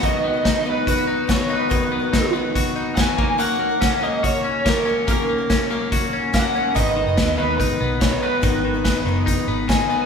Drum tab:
HH |x-x-x-x-|x-x-x-x-|x-x-x-x-|x-x-x-x-|
SD |--o---o-|--o---o-|--o---o-|--o---o-|
BD |o-o-o-o-|o-o-o-oo|--o-o-o-|o-o-o-o-|

HH |x-x-x-x-|x-x-x-x-|
SD |--o---o-|--o---o-|
BD |o-o-o-o-|o-o-o-o-|